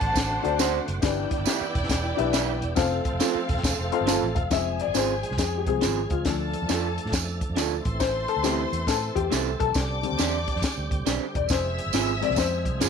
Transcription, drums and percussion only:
0.01 kick, closed hi-hat
0.15 kick, snare, closed hi-hat, tambourine
0.45 closed hi-hat
0.59 snare, closed hi-hat, tambourine
0.88 closed hi-hat
1.02 kick, snare, closed hi-hat, tambourine
1.31 kick, closed hi-hat
1.46 snare, closed hi-hat, tambourine
1.75 kick, closed hi-hat
1.83 snare
1.89 kick, snare, closed hi-hat, tambourine
2.19 closed hi-hat
2.33 snare, closed hi-hat, tambourine
2.62 closed hi-hat
2.76 kick, snare, closed hi-hat, tambourine
3.05 kick, closed hi-hat
3.20 snare, closed hi-hat, tambourine
3.49 kick, closed hi-hat
3.57 snare
3.64 kick, snare, closed hi-hat, tambourine
3.92 closed hi-hat
4.07 snare, closed hi-hat, tambourine
4.36 kick, closed hi-hat
4.51 kick, snare, closed hi-hat, tambourine
4.79 closed hi-hat
4.94 snare, closed hi-hat, tambourine
5.23 closed hi-hat
5.31 snare
5.38 kick, snare, closed hi-hat, tambourine
5.67 kick, closed hi-hat
5.81 snare, closed hi-hat, tambourine
6.10 kick, closed hi-hat
6.25 kick, snare, closed hi-hat, tambourine
6.54 closed hi-hat
6.69 snare, closed hi-hat, tambourine
6.98 closed hi-hat
7.06 snare
7.12 kick, snare, closed hi-hat, tambourine
7.41 kick, closed hi-hat
7.56 snare, closed hi-hat, tambourine
7.85 kick, closed hi-hat
8.00 kick, snare, closed hi-hat, tambourine
8.28 closed hi-hat
8.44 snare, closed hi-hat, tambourine
8.73 closed hi-hat
8.87 kick, snare, closed hi-hat, tambourine
9.16 kick, closed hi-hat
9.32 snare, closed hi-hat, tambourine
9.60 kick, closed hi-hat
9.74 kick, snare, closed hi-hat, tambourine
10.03 closed hi-hat
10.19 snare, closed hi-hat, tambourine
10.48 kick, closed hi-hat
10.56 snare
10.62 kick, snare, closed hi-hat, tambourine
10.91 kick, closed hi-hat
11.06 snare, closed hi-hat, tambourine
11.35 kick, closed hi-hat
11.49 kick, snare, closed hi-hat, tambourine
11.78 closed hi-hat
11.93 snare, closed hi-hat, tambourine
12.22 closed hi-hat
12.31 snare
12.36 kick, snare, closed hi-hat, tambourine
12.65 kick, closed hi-hat
12.81 snare, closed hi-hat, tambourine

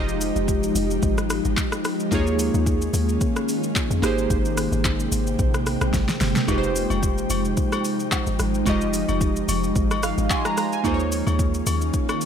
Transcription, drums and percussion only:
0.09 shaker
0.21 open hi-hat, shaker
0.36 shaker
0.48 kick, shaker
0.63 shaker
0.76 open hi-hat, shaker
0.91 shaker
1.03 kick, shaker
1.18 cross-stick, shaker
1.30 cross-stick, open hi-hat, shaker
1.45 shaker
1.57 kick, clap, shaker
1.72 cross-stick, shaker
1.85 cross-stick, open hi-hat, shaker
2.00 shaker
2.12 kick, shaker
2.27 shaker
2.39 open hi-hat, shaker
2.54 shaker
2.66 kick, shaker
2.82 shaker
2.94 open hi-hat, shaker
3.09 shaker
3.21 kick, shaker
3.36 cross-stick, shaker
3.49 open hi-hat, shaker
3.63 shaker
3.76 kick, clap, shaker
3.91 shaker
4.03 cross-stick, open hi-hat, shaker
4.18 shaker
4.30 kick, shaker
4.45 shaker
4.57 cross-stick, open hi-hat, shaker
4.73 shaker
4.85 kick, clap, shaker
5.00 shaker
5.12 open hi-hat, shaker
5.27 shaker
5.39 kick, shaker
5.54 cross-stick, shaker
5.66 cross-stick, open hi-hat, shaker
5.81 cross-stick, shaker
5.94 kick, snare, shaker
6.09 snare, shaker
6.21 snare, open hi-hat, shaker
6.36 snare, shaker
6.48 kick, high agogo, shaker
6.63 shaker
6.76 open hi-hat, shaker
6.90 high agogo, shaker
7.03 kick, shaker
7.18 shaker
7.30 open hi-hat, high agogo, shaker
7.45 shaker
7.57 kick, shaker
7.72 cross-stick, high agogo, shaker
7.85 open hi-hat, shaker
8.00 shaker
8.12 kick, clap, high agogo, low woodblock, shaker
8.27 shaker
8.39 cross-stick, open hi-hat, shaker
8.54 shaker
8.66 kick, high agogo, shaker
8.81 shaker
8.93 open hi-hat, shaker
9.09 high agogo, shaker
9.21 kick, shaker
9.36 shaker
9.49 open hi-hat, high agogo, shaker
9.64 shaker
9.76 kick, shaker
9.91 cross-stick, high agogo, shaker
10.03 cross-stick, open hi-hat, shaker
10.18 shaker
10.30 kick, clap, high agogo, low woodblock, shaker
10.45 cross-stick, shaker
10.57 cross-stick, open hi-hat, shaker
10.73 shaker
10.85 kick, high agogo, shaker
11.00 shaker
11.12 open hi-hat, shaker
11.27 high agogo, shaker
11.39 kick, shaker
11.54 shaker
11.67 open hi-hat, high agogo, shaker
11.81 shaker
11.94 kick, shaker
12.09 cross-stick, high agogo, shaker
12.21 open hi-hat, shaker

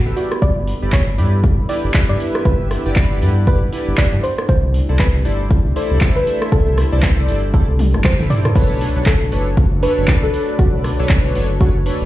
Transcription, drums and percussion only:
0.06 closed hi-hat
0.17 open hi-hat
0.32 cross-stick, closed hi-hat
0.42 kick, closed hi-hat
0.67 open hi-hat
0.92 kick, clap, closed hi-hat
1.18 open hi-hat
1.44 kick, closed hi-hat
1.69 open hi-hat
1.94 kick, clap, closed hi-hat
2.10 closed hi-hat
2.20 open hi-hat
2.35 cross-stick, closed hi-hat
2.45 kick, closed hi-hat
2.71 cross-stick, open hi-hat
2.96 kick, clap, closed hi-hat
3.22 open hi-hat
3.47 kick, closed hi-hat
3.73 open hi-hat
3.98 kick, clap, closed hi-hat
4.13 closed hi-hat
4.23 open hi-hat
4.38 cross-stick, closed hi-hat
4.49 kick, closed hi-hat
4.74 open hi-hat
4.99 kick, clap, closed hi-hat
5.25 open hi-hat
5.50 kick, closed hi-hat
5.76 open hi-hat
6.01 kick, clap, closed hi-hat
6.16 closed hi-hat
6.27 open hi-hat
6.42 cross-stick, closed hi-hat
6.52 kick, closed hi-hat
6.67 closed hi-hat
6.78 cross-stick, open hi-hat
6.93 closed hi-hat
7.03 kick, clap, closed hi-hat
7.28 open hi-hat
7.43 closed hi-hat
7.54 kick, closed hi-hat
7.79 open hi-hat, high tom
7.94 cross-stick, closed hi-hat, high tom
8.04 kick, clap, closed hi-hat, mid tom
8.20 closed hi-hat, mid tom
8.30 mid tom, open hi-hat
8.45 cross-stick, closed hi-hat, mid tom
8.56 kick, closed hi-hat, crash
8.81 open hi-hat
8.96 closed hi-hat
9.06 kick, clap, closed hi-hat
9.32 open hi-hat
9.57 kick, closed hi-hat
9.83 open hi-hat
10.08 kick, clap, closed hi-hat
10.23 closed hi-hat
10.34 open hi-hat
10.49 closed hi-hat
10.59 kick, closed hi-hat
10.84 cross-stick, open hi-hat
10.99 closed hi-hat
11.09 kick, clap, closed hi-hat
11.35 open hi-hat
11.61 kick, closed hi-hat
11.86 open hi-hat

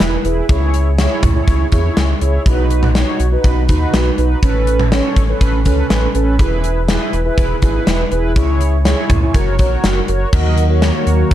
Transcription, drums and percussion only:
0.00 snare, closed hi-hat
0.25 closed hi-hat
0.49 kick, closed hi-hat
0.74 closed hi-hat
0.98 snare, closed hi-hat
1.23 kick, closed hi-hat, mid tom
1.47 kick, closed hi-hat
1.72 kick, closed hi-hat
1.97 snare, closed hi-hat
2.21 closed hi-hat
2.46 kick, closed hi-hat
2.70 closed hi-hat
2.83 mid tom
2.95 snare, closed hi-hat
3.20 closed hi-hat
3.44 kick, closed hi-hat
3.69 kick, closed hi-hat
3.94 snare, closed hi-hat
4.18 closed hi-hat
4.43 kick, closed hi-hat
4.67 closed hi-hat
4.79 mid tom
4.92 snare, closed hi-hat
5.16 kick, closed hi-hat
5.41 kick, closed hi-hat
5.65 kick, closed hi-hat
5.90 snare, closed hi-hat
6.15 closed hi-hat
6.39 kick, closed hi-hat
6.64 closed hi-hat
6.88 snare, closed hi-hat
7.13 closed hi-hat
7.38 kick, closed hi-hat
7.62 kick, closed hi-hat
7.87 snare, closed hi-hat
8.12 closed hi-hat
8.36 kick, closed hi-hat
8.61 closed hi-hat
8.85 snare, closed hi-hat
9.10 kick, closed hi-hat, mid tom
9.34 kick, closed hi-hat
9.59 kick, closed hi-hat
9.84 snare, closed hi-hat
10.08 closed hi-hat
10.33 kick, crash
10.57 closed hi-hat
10.82 snare, closed hi-hat
11.07 closed hi-hat
11.31 closed hi-hat

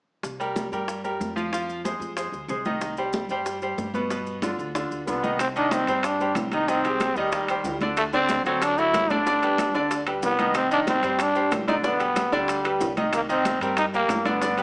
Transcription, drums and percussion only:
0.23 high bongo, high conga, maracas
0.41 high conga, maracas
0.56 high bongo, high conga, maracas
0.72 high bongo, high conga, maracas
0.88 high bongo, high conga, maracas
1.05 high bongo, high conga, maracas
1.21 high bongo, low bongo, high conga, maracas
1.37 high bongo, high conga, maracas
1.53 high bongo, high conga, maracas
1.69 high conga, maracas
1.85 high bongo, high conga, maracas
2.01 high bongo, high conga, maracas
2.17 high bongo, high conga, maracas
2.33 high bongo, high conga, maracas
2.49 high bongo, low bongo, high conga, maracas
2.65 high bongo, high conga, maracas
2.81 high bongo, high conga, maracas
2.97 high conga, maracas
3.13 high bongo, high conga, maracas
3.29 high bongo, high conga, maracas
3.46 high bongo, high conga, maracas
3.62 high bongo, high conga, maracas
3.78 high bongo, low bongo, high conga, maracas
3.94 high bongo, high conga, maracas
4.10 high bongo, high conga, maracas
4.27 high conga, maracas
4.42 high bongo, high conga, maracas
4.59 high bongo, high conga, maracas
4.75 high bongo, high conga, maracas
4.91 high bongo, high conga, maracas
5.07 high bongo, low bongo, high conga, maracas
5.24 high bongo, high conga, maracas
5.39 high bongo, high conga, high timbale, maracas
5.55 high conga, maracas
5.71 high bongo, high conga, high timbale, low timbale, maracas
5.87 high bongo, high conga, high timbale, maracas
6.03 high bongo, high conga, high timbale, maracas
6.20 high bongo, high conga, maracas
6.35 high bongo, low bongo, high conga, high timbale, low timbale, maracas
6.52 high bongo, high conga, high timbale, maracas
6.68 high bongo, high conga, maracas
6.84 high conga, high timbale, maracas
7.00 high bongo, high conga, high timbale, low timbale, maracas
7.16 high bongo, high conga, maracas
7.32 high bongo, high conga, high timbale, maracas
7.48 high bongo, high conga, high timbale, maracas
7.65 high bongo, low bongo, high conga, low timbale, maracas
7.81 high bongo, high conga, high timbale, maracas
7.97 high bongo, high timbale, maracas
8.13 high conga, maracas
8.29 high bongo, high conga, high timbale, low timbale, maracas
8.46 high bongo, high conga, high timbale, maracas
8.62 high bongo, high conga, high timbale, maracas
8.78 high bongo, high conga, maracas
8.94 high bongo, low bongo, high conga, high timbale, low timbale, maracas
9.10 high bongo, high conga, high timbale, maracas
9.26 high bongo, high conga, maracas
9.43 high conga, high timbale, maracas
9.58 high bongo, high conga, high timbale, low timbale, maracas
9.75 high bongo, high conga, maracas
9.91 high bongo, high conga, high timbale, maracas
10.07 high bongo, high conga, high timbale, maracas
10.23 high bongo, low bongo, high conga, low timbale, maracas
10.39 high bongo, high conga, high timbale, maracas
10.54 high bongo, high conga, high timbale, maracas
10.71 high conga, maracas
10.87 high bongo, high conga, high timbale, low timbale, maracas
11.03 high bongo, high conga, high timbale, maracas
11.19 high bongo, high conga, high timbale, maracas
11.35 high bongo, high conga, maracas
11.52 high bongo, low bongo, high conga, high timbale, low timbale, maracas
11.68 high bongo, high conga, high timbale, maracas
11.84 high bongo, high conga, maracas
12.00 high conga, high timbale, maracas
12.16 high bongo, high conga, high timbale, low timbale, maracas
12.32 high bongo, high conga, maracas
12.48 high bongo, high conga, high timbale, maracas
12.64 high bongo, high conga, high timbale, maracas
12.80 high bongo, low bongo, high conga, low timbale, maracas
12.97 high bongo, high conga, high timbale, maracas
13.13 high bongo, high conga, high timbale, maracas
13.29 high conga, maracas
13.45 high bongo, high conga, high timbale, low timbale, maracas
13.61 high bongo, high conga, high timbale, maracas
13.77 high bongo, high conga, high timbale, maracas
13.93 high bongo, high conga, maracas
14.09 high bongo, low bongo, high conga, high timbale, low timbale, maracas
14.25 high bongo, high conga, high timbale, maracas
14.42 high bongo, high conga, maracas
14.57 high conga, high timbale, maracas

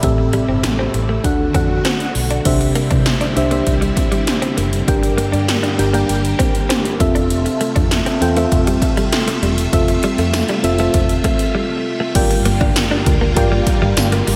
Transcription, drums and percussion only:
0.03 kick, closed hi-hat
0.33 closed hi-hat
0.63 snare, closed hi-hat
0.94 closed hi-hat
1.24 kick, closed hi-hat
1.54 kick, closed hi-hat
1.85 snare, closed hi-hat
2.00 closed hi-hat
2.15 open hi-hat
2.30 closed hi-hat
2.45 kick, closed hi-hat, crash
2.61 closed hi-hat
2.75 closed hi-hat
2.91 kick, closed hi-hat
3.06 snare, closed hi-hat
3.21 closed hi-hat
3.37 closed hi-hat
3.51 closed hi-hat
3.67 kick, closed hi-hat
3.82 closed hi-hat
3.97 kick, closed hi-hat
4.12 closed hi-hat
4.27 snare, closed hi-hat
4.42 closed hi-hat
4.58 closed hi-hat
4.73 closed hi-hat
4.88 kick, closed hi-hat
5.03 closed hi-hat
5.18 closed hi-hat
5.33 closed hi-hat
5.48 snare, closed hi-hat
5.64 closed hi-hat
5.79 closed hi-hat
5.94 closed hi-hat
6.09 closed hi-hat
6.25 closed hi-hat
6.39 kick, closed hi-hat
6.55 closed hi-hat
6.70 snare, closed hi-hat
6.85 closed hi-hat
7.00 kick, closed hi-hat
7.16 closed hi-hat
7.30 closed hi-hat
7.46 closed hi-hat
7.61 closed hi-hat
7.76 kick, closed hi-hat
7.91 snare, closed hi-hat
8.06 closed hi-hat
8.22 closed hi-hat
8.37 closed hi-hat
8.52 kick, closed hi-hat
8.67 closed hi-hat
8.82 kick, closed hi-hat
8.97 closed hi-hat
9.12 snare, closed hi-hat
9.28 closed hi-hat
9.43 closed hi-hat
9.58 closed hi-hat
9.73 kick, closed hi-hat
9.88 closed hi-hat
10.03 closed hi-hat
10.18 closed hi-hat
10.33 snare, closed hi-hat, tambourine
10.48 closed hi-hat
10.64 closed hi-hat
10.78 closed hi-hat
10.94 kick, closed hi-hat
11.09 closed hi-hat
11.24 kick, closed hi-hat
11.39 closed hi-hat
12.15 kick, closed hi-hat, crash
12.31 closed hi-hat
12.45 closed hi-hat
12.61 kick
12.76 snare, closed hi-hat, tambourine
13.06 kick, closed hi-hat
13.37 kick, closed hi-hat
13.67 kick, closed hi-hat
13.97 snare, closed hi-hat, tambourine
14.12 closed hi-hat
14.27 open hi-hat

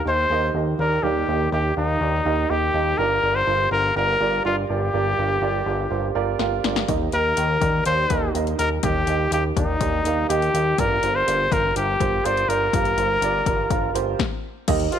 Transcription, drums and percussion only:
6.39 snare
6.64 snare
6.76 snare
6.88 kick, closed hi-hat
7.12 closed hi-hat
7.37 closed hi-hat
7.61 kick, closed hi-hat
7.86 closed hi-hat
8.10 kick, closed hi-hat
8.35 closed hi-hat
8.47 closed hi-hat
8.59 closed hi-hat
8.83 kick, closed hi-hat
9.07 closed hi-hat
9.32 closed hi-hat
9.57 kick, closed hi-hat
9.81 kick, closed hi-hat
10.05 closed hi-hat
10.30 closed hi-hat
10.42 closed hi-hat
10.55 closed hi-hat
10.78 kick, closed hi-hat
11.03 closed hi-hat
11.28 closed hi-hat
11.52 kick, closed hi-hat
11.76 closed hi-hat
12.00 kick, closed hi-hat
12.25 closed hi-hat
12.37 closed hi-hat
12.50 closed hi-hat
12.73 kick, closed hi-hat
12.85 closed hi-hat
12.98 closed hi-hat
13.22 closed hi-hat
13.46 kick, closed hi-hat
13.70 kick, closed hi-hat
13.95 closed hi-hat
14.19 kick, snare
14.68 kick, closed hi-hat, crash
14.80 closed hi-hat
14.92 closed hi-hat

